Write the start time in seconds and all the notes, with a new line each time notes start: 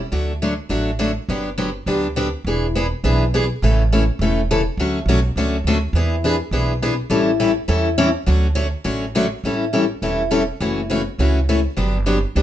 0.12 D2 D3 F#3 A3 D4 F#4
0.42 D3 F#3 A3 D4 F#4
0.69 A1 D3 F#3 A3 D4 F#4
0.99 D3 F#3 A3 D4 F#4
1.29 G1 D3 F#3 B3 D4 G4
1.58 D3 F#3 B3 D4 G4
1.86 D2 D3 F#3 B3 D4 G4
2.16 D3 F#3 B3 D4 G4
2.44 E1 E3 B3 D4 G#4
2.75 E3 B3 D4 G#4
3.04 B1 E3 B3 D4 G#4
3.34 E3 B3 D4 G#4
3.62 A1 C#3 E3 A3 C#4 A4
3.92 C#3 E3 A3 C#4 A4
4.19 E1 C#3 E3 A3 C#4 A4
4.51 C#3 E3 A3 C#4 A4
4.77 D2 D3 F#3 A3 C#4 F#4
5.06 B1 D3 F#3 A3 C#4 F#4
5.36 C#2 D3 F#3 A3 C#4 F#4
5.64 D2 D3 F#3 A3 C#4
5.68 F#4
5.93 E2 E3 B3 D4 G#4
6.24 E3 B3 D4 G#4
6.51 B1 E3 B3 D4 G#4
6.82 E3 B3 D4 G#4
7.10 A1 E3 G3 C#4 E4 A4
7.40 E3 G3 C#4 E4 A4
7.68 E2 E3 G3 C#4 E4 A4
7.98 E3 G3 C#4 E4 A4
8.26 D2 D3 F#3 A3 C#4 F#4
8.55 D3 F#3 A3 C#4 F#4
8.84 A1 D3 F#3 A3 C#4 F#4
9.15 D3 F#3 A3 C#4 F#4
9.44 A1 E3 G3 C#4 E4 A4
9.73 E3 G3 C#4 E4 A4
10.02 E1 E3 G3 C#4 E4 A4
10.31 E3 G3 C#4 E4 A4
10.60 F#1 C#3 E3 A3 C#4 F#4
10.90 C#3 E3 A3 C#4 F#4
11.19 C#2 C#3 E3 A3 C#4 F#4
11.49 C#3 E3 A3 C#4 F#4
11.77 G1 D3 F#3 B3 D4 G4
12.06 D3 F#3 B3 D4 G4
12.35 C#2 D3 F#3 B3 D4 G4